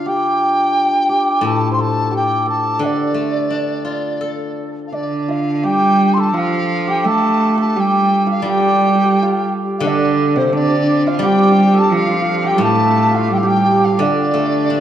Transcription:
Already playing: D3 D4 F4
0.06 G4 G5
1.09 G4
1.41 A2 A4
1.46 A5
1.72 C5 C6
1.79 A4 A5
2.05 A4
2.11 G4
2.16 G5
2.46 A4 A5
2.79 D3 D4
2.84 D5
3.14 A3
3.50 D4
3.85 F4
4.21 A4
4.87 F5
4.92 D3 D4 D5
5.28 F4 F5
5.63 G3 G4 G5
6.13 A4 C6
6.20 A5
6.34 F3 F4 F5
6.87 G4 G5
7.04 A3 A4 A5
7.58 A4 A5
7.76 G3 G4 G5
8.27 F4 F5
8.42 G3 G4
8.49 G5
8.53 G4
8.60 G4
8.68 G4
8.75 G4
8.81 G4
8.88 G4
8.95 G4
9.04 G4
9.22 F4
9.78 D3 F5
9.83 D3 D4
9.87 D5
10.36 C3 C4 C5
10.53 D3 D4 D5
10.62 D4
10.68 D4
10.76 D4
10.83 D4
10.91 D4
11.07 F4 F5
11.19 G3 G4
11.25 G5
11.30 G4
11.36 G4
11.44 G4
11.52 G4
11.60 G4
11.74 A4
11.79 A5
11.92 F3 F4
11.96 F4 F5
12.07 F4
12.14 F4
12.22 F4
12.28 F4
12.44 G4 G5
12.58 A2 A3 A4
12.64 A4 A5
12.76 A4
12.84 A4
12.91 A4
12.98 A4
13.11 F4
13.15 F5
13.28 G3 G4
13.33 G5
13.37 F5
13.42 G3 G4
13.47 G4 G5
13.57 G4
13.64 G4
13.71 G4
13.79 G4
13.84 G4 F5
13.92 F4
13.98 D3 D4 D5
14.34 A3
14.70 D4

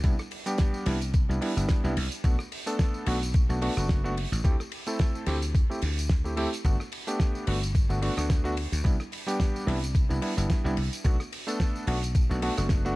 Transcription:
0.04 C2 G3 B3 D4 E4, kick, closed hi-hat, tambourine
0.19 cross-stick, tambourine
0.31 open hi-hat, ride
0.46 G3 B3 D4 G4, closed hi-hat, tambourine
0.58 kick, snare, closed hi-hat, tambourine
0.74 tambourine
0.86 C2 G3 B3 D4 E4, snare, open hi-hat, ride
1.02 closed hi-hat, tambourine
1.14 kick, closed hi-hat, tambourine
1.29 C2 G3 B3 D4 E4, tambourine
1.41 G3 B3 D4 E4, open hi-hat, ride
1.56 G1 G3 B3 D4 E4, closed hi-hat, tambourine
1.69 kick, snare, closed hi-hat, tambourine
1.84 C2 G3 B3 D4 E4, tambourine
1.97 C2, open hi-hat, ride
2.12 closed hi-hat, tambourine
2.24 B1 A3 B3 D4 F#4, kick, closed hi-hat, tambourine
2.39 cross-stick, tambourine
2.52 open hi-hat, ride
2.66 A3 B3 D4 A4, closed hi-hat, tambourine
2.79 kick, snare, closed hi-hat, tambourine
2.94 tambourine
3.06 B1 A3 B3 D4 F#4, open hi-hat, ride
3.22 closed hi-hat, tambourine
3.34 kick, closed hi-hat, tambourine
3.49 B1 A3 B3 D4 F#4, tambourine
3.61 A3 B3 D4 F#4, open hi-hat, ride
3.76 F#1 A3 B3 D4 F#4, cross-stick, closed hi-hat, tambourine
3.89 kick, snare, closed hi-hat, tambourine
4.04 A3 B3 D4 F#4, tambourine
4.17 open hi-hat, ride
4.32 A1, closed hi-hat, tambourine
4.44 A3 C4 E4 G4, kick, closed hi-hat, tambourine
4.60 cross-stick, tambourine
4.72 open hi-hat, ride
4.87 A3 C4 E4 A4, closed hi-hat, tambourine
4.99 kick, snare, closed hi-hat, tambourine
5.15 tambourine
5.26 D2 A3 C4 E4 G4, snare, open hi-hat, ride
5.42 closed hi-hat, tambourine
5.55 kick, closed hi-hat, tambourine
5.70 A3 C4 E4 G4, tambourine
5.82 D2, open hi-hat, ride
5.98 closed hi-hat, tambourine
6.09 kick, snare, closed hi-hat
6.24 A3 C4 E4 G4, tambourine
6.37 A3 C4 E4 G4, open hi-hat, ride
6.53 closed hi-hat, tambourine
6.64 G1 A3 B3 D4 F#4, kick, closed hi-hat, tambourine
6.80 cross-stick, tambourine
6.92 open hi-hat, ride
7.07 A3 B3 D4 G4, closed hi-hat, tambourine
7.20 kick, snare, closed hi-hat, tambourine
7.35 tambourine
7.47 G1 A3 B3 D4 F#4, open hi-hat, ride
7.63 closed hi-hat, tambourine
7.75 kick, closed hi-hat, tambourine
7.89 G1 A3 B3 D4 F#4, tambourine
8.02 A3 B3 D4 F#4, open hi-hat, ride
8.17 D2 A3 B3 D4 F#4, cross-stick, closed hi-hat, tambourine
8.30 kick, snare, closed hi-hat, tambourine
8.44 A3 B3 D4 F#4, tambourine
8.57 open hi-hat, ride
8.72 D2, closed hi-hat, tambourine
8.84 C2 G3 B3 D4 E4, kick, closed hi-hat, tambourine
9.00 cross-stick, tambourine
9.12 open hi-hat, ride
9.27 G3 B3 D4 G4, closed hi-hat, tambourine
9.40 kick, snare, closed hi-hat, tambourine
9.56 tambourine
9.66 C2 G3 B3 D4 E4, snare, open hi-hat, ride
9.83 closed hi-hat, tambourine
9.95 kick, closed hi-hat, tambourine
10.09 C2 G3 B3 D4 E4, tambourine
10.21 G3 B3 D4 E4, open hi-hat, ride
10.37 G1 G3 B3 D4 E4, closed hi-hat, tambourine
10.50 kick, snare, closed hi-hat, tambourine
10.64 C2 G3 B3 D4 E4, tambourine
10.77 C2, open hi-hat, ride
10.93 closed hi-hat, tambourine
11.04 B1 A3 B3 D4 F#4, kick, closed hi-hat, tambourine
11.20 cross-stick, tambourine
11.32 open hi-hat, ride
11.47 A3 B3 D4 A4, closed hi-hat, tambourine
11.60 kick, snare, closed hi-hat, tambourine
11.76 tambourine
11.87 B1 A3 B3 D4 F#4, open hi-hat, ride
12.03 closed hi-hat, tambourine
12.15 kick, closed hi-hat, tambourine
12.29 B1 A3 B3 D4 F#4, tambourine
12.42 A3 B3 D4 F#4, open hi-hat, ride
12.57 F#1 A3 B3 D4 F#4, cross-stick, closed hi-hat, tambourine
12.69 kick, snare, closed hi-hat, tambourine
12.85 A3 B3 D4 F#4, tambourine

